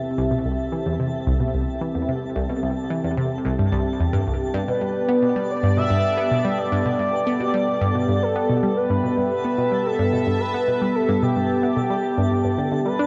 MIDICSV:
0, 0, Header, 1, 5, 480
1, 0, Start_track
1, 0, Tempo, 545455
1, 36, Time_signature, 4, 2, 24, 8
1, 11499, End_track
2, 0, Start_track
2, 0, Title_t, "Synth texture"
2, 0, Program_c, 0, 99
2, 0, Note_on_c, 0, 69, 78
2, 0, Note_on_c, 0, 81, 76
2, 11499, Note_off_c, 0, 69, 0
2, 11499, Note_off_c, 0, 81, 0
2, 11499, End_track
3, 0, Start_track
3, 0, Title_t, "Analog synth lead"
3, 0, Program_c, 1, 81
3, 4122, Note_on_c, 1, 71, 104
3, 4846, Note_on_c, 1, 74, 107
3, 4859, Note_off_c, 1, 71, 0
3, 5076, Note_off_c, 1, 74, 0
3, 5082, Note_on_c, 1, 76, 107
3, 5796, Note_on_c, 1, 74, 109
3, 5810, Note_off_c, 1, 76, 0
3, 6032, Note_off_c, 1, 74, 0
3, 6037, Note_on_c, 1, 74, 112
3, 7239, Note_on_c, 1, 69, 97
3, 7252, Note_off_c, 1, 74, 0
3, 7711, Note_on_c, 1, 71, 99
3, 7725, Note_off_c, 1, 69, 0
3, 8185, Note_off_c, 1, 71, 0
3, 8190, Note_on_c, 1, 71, 95
3, 8675, Note_on_c, 1, 69, 93
3, 8688, Note_off_c, 1, 71, 0
3, 9153, Note_on_c, 1, 71, 99
3, 9166, Note_off_c, 1, 69, 0
3, 9636, Note_on_c, 1, 69, 90
3, 9649, Note_off_c, 1, 71, 0
3, 9879, Note_on_c, 1, 67, 91
3, 9892, Note_off_c, 1, 69, 0
3, 11314, Note_off_c, 1, 67, 0
3, 11319, Note_on_c, 1, 71, 94
3, 11499, Note_off_c, 1, 71, 0
3, 11499, End_track
4, 0, Start_track
4, 0, Title_t, "Analog synth pad"
4, 0, Program_c, 2, 89
4, 0, Note_on_c, 2, 60, 74
4, 0, Note_on_c, 2, 67, 72
4, 0, Note_on_c, 2, 76, 83
4, 3839, Note_off_c, 2, 60, 0
4, 3839, Note_off_c, 2, 76, 0
4, 3874, Note_on_c, 2, 74, 85
4, 3875, Note_on_c, 2, 59, 75
4, 7680, Note_off_c, 2, 74, 0
4, 7716, Note_on_c, 2, 76, 85
4, 11499, Note_off_c, 2, 59, 0
4, 11499, Note_off_c, 2, 67, 0
4, 11499, Note_off_c, 2, 76, 0
4, 11499, End_track
5, 0, Start_track
5, 0, Title_t, "Synth arpeggio sound"
5, 0, Program_c, 3, 84
5, 157, Note_on_c, 3, 36, 101
5, 217, Note_off_c, 3, 36, 0
5, 275, Note_on_c, 3, 47, 68
5, 336, Note_off_c, 3, 47, 0
5, 398, Note_on_c, 3, 36, 74
5, 487, Note_off_c, 3, 36, 0
5, 636, Note_on_c, 3, 52, 72
5, 726, Note_off_c, 3, 52, 0
5, 758, Note_on_c, 3, 40, 76
5, 793, Note_off_c, 3, 40, 0
5, 878, Note_on_c, 3, 48, 70
5, 913, Note_off_c, 3, 48, 0
5, 1116, Note_on_c, 3, 36, 95
5, 1176, Note_off_c, 3, 36, 0
5, 1235, Note_on_c, 3, 47, 69
5, 1295, Note_off_c, 3, 47, 0
5, 1357, Note_on_c, 3, 36, 72
5, 1447, Note_off_c, 3, 36, 0
5, 1597, Note_on_c, 3, 52, 74
5, 1687, Note_off_c, 3, 52, 0
5, 1716, Note_on_c, 3, 40, 74
5, 1752, Note_off_c, 3, 40, 0
5, 1836, Note_on_c, 3, 48, 71
5, 1872, Note_off_c, 3, 48, 0
5, 2075, Note_on_c, 3, 36, 97
5, 2136, Note_off_c, 3, 36, 0
5, 2195, Note_on_c, 3, 47, 72
5, 2256, Note_off_c, 3, 47, 0
5, 2314, Note_on_c, 3, 36, 72
5, 2405, Note_off_c, 3, 36, 0
5, 2555, Note_on_c, 3, 52, 73
5, 2646, Note_off_c, 3, 52, 0
5, 2676, Note_on_c, 3, 40, 75
5, 2712, Note_off_c, 3, 40, 0
5, 2794, Note_on_c, 3, 48, 72
5, 2831, Note_off_c, 3, 48, 0
5, 3035, Note_on_c, 3, 36, 93
5, 3096, Note_off_c, 3, 36, 0
5, 3156, Note_on_c, 3, 43, 71
5, 3246, Note_off_c, 3, 43, 0
5, 3274, Note_on_c, 3, 36, 94
5, 3335, Note_off_c, 3, 36, 0
5, 3517, Note_on_c, 3, 40, 76
5, 3552, Note_off_c, 3, 40, 0
5, 3635, Note_on_c, 3, 43, 95
5, 3672, Note_off_c, 3, 43, 0
5, 3757, Note_on_c, 3, 36, 71
5, 3817, Note_off_c, 3, 36, 0
5, 3995, Note_on_c, 3, 43, 99
5, 4056, Note_off_c, 3, 43, 0
5, 4118, Note_on_c, 3, 47, 70
5, 4153, Note_off_c, 3, 47, 0
5, 4235, Note_on_c, 3, 43, 75
5, 4326, Note_off_c, 3, 43, 0
5, 4474, Note_on_c, 3, 59, 74
5, 4565, Note_off_c, 3, 59, 0
5, 4594, Note_on_c, 3, 47, 75
5, 4631, Note_off_c, 3, 47, 0
5, 4715, Note_on_c, 3, 55, 71
5, 4752, Note_off_c, 3, 55, 0
5, 4955, Note_on_c, 3, 43, 98
5, 5015, Note_off_c, 3, 43, 0
5, 5076, Note_on_c, 3, 47, 71
5, 5112, Note_off_c, 3, 47, 0
5, 5195, Note_on_c, 3, 43, 72
5, 5286, Note_off_c, 3, 43, 0
5, 5433, Note_on_c, 3, 59, 77
5, 5525, Note_off_c, 3, 59, 0
5, 5554, Note_on_c, 3, 47, 73
5, 5591, Note_off_c, 3, 47, 0
5, 5673, Note_on_c, 3, 55, 76
5, 5710, Note_off_c, 3, 55, 0
5, 5914, Note_on_c, 3, 43, 99
5, 5975, Note_off_c, 3, 43, 0
5, 6031, Note_on_c, 3, 47, 76
5, 6070, Note_off_c, 3, 47, 0
5, 6153, Note_on_c, 3, 43, 78
5, 6245, Note_off_c, 3, 43, 0
5, 6395, Note_on_c, 3, 59, 73
5, 6486, Note_off_c, 3, 59, 0
5, 6515, Note_on_c, 3, 47, 73
5, 6551, Note_off_c, 3, 47, 0
5, 6632, Note_on_c, 3, 55, 72
5, 6670, Note_off_c, 3, 55, 0
5, 6874, Note_on_c, 3, 43, 97
5, 6935, Note_off_c, 3, 43, 0
5, 6994, Note_on_c, 3, 47, 70
5, 7031, Note_off_c, 3, 47, 0
5, 7114, Note_on_c, 3, 43, 69
5, 7205, Note_off_c, 3, 43, 0
5, 7354, Note_on_c, 3, 59, 75
5, 7445, Note_off_c, 3, 59, 0
5, 7476, Note_on_c, 3, 47, 76
5, 7512, Note_off_c, 3, 47, 0
5, 7596, Note_on_c, 3, 55, 73
5, 7632, Note_off_c, 3, 55, 0
5, 7833, Note_on_c, 3, 43, 98
5, 7894, Note_off_c, 3, 43, 0
5, 7953, Note_on_c, 3, 47, 69
5, 7990, Note_off_c, 3, 47, 0
5, 8076, Note_on_c, 3, 43, 77
5, 8166, Note_off_c, 3, 43, 0
5, 8313, Note_on_c, 3, 59, 76
5, 8405, Note_off_c, 3, 59, 0
5, 8432, Note_on_c, 3, 47, 77
5, 8470, Note_off_c, 3, 47, 0
5, 8552, Note_on_c, 3, 55, 70
5, 8590, Note_off_c, 3, 55, 0
5, 8794, Note_on_c, 3, 43, 99
5, 8855, Note_off_c, 3, 43, 0
5, 8915, Note_on_c, 3, 47, 71
5, 8952, Note_off_c, 3, 47, 0
5, 9036, Note_on_c, 3, 43, 70
5, 9126, Note_off_c, 3, 43, 0
5, 9276, Note_on_c, 3, 59, 77
5, 9367, Note_off_c, 3, 59, 0
5, 9398, Note_on_c, 3, 47, 75
5, 9433, Note_off_c, 3, 47, 0
5, 9517, Note_on_c, 3, 55, 72
5, 9553, Note_off_c, 3, 55, 0
5, 9756, Note_on_c, 3, 43, 102
5, 9816, Note_off_c, 3, 43, 0
5, 9878, Note_on_c, 3, 47, 76
5, 9913, Note_off_c, 3, 47, 0
5, 9997, Note_on_c, 3, 43, 78
5, 10087, Note_off_c, 3, 43, 0
5, 10236, Note_on_c, 3, 59, 73
5, 10326, Note_off_c, 3, 59, 0
5, 10354, Note_on_c, 3, 47, 74
5, 10391, Note_off_c, 3, 47, 0
5, 10473, Note_on_c, 3, 55, 74
5, 10511, Note_off_c, 3, 55, 0
5, 10715, Note_on_c, 3, 43, 100
5, 10776, Note_off_c, 3, 43, 0
5, 10832, Note_on_c, 3, 43, 74
5, 10924, Note_off_c, 3, 43, 0
5, 10953, Note_on_c, 3, 43, 77
5, 11045, Note_off_c, 3, 43, 0
5, 11071, Note_on_c, 3, 50, 82
5, 11164, Note_off_c, 3, 50, 0
5, 11191, Note_on_c, 3, 50, 75
5, 11254, Note_off_c, 3, 50, 0
5, 11313, Note_on_c, 3, 55, 76
5, 11375, Note_off_c, 3, 55, 0
5, 11434, Note_on_c, 3, 62, 99
5, 11499, Note_off_c, 3, 62, 0
5, 11499, End_track
0, 0, End_of_file